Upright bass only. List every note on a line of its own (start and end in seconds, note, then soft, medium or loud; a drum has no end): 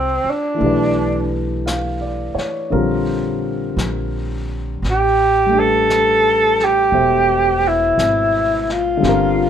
0.00 0.21 C2 medium
0.24 muted upright bass stroke soft
0.61 2.32 B1 medium
2.35 muted upright bass stroke soft
2.72 3.75 A#1 medium
3.77 4.80 A#1 medium
4.82 6.90 A1 medium
6.92 7.94 E1 medium
7.98 8.99 G#1 medium
9.03 9.50 G1 medium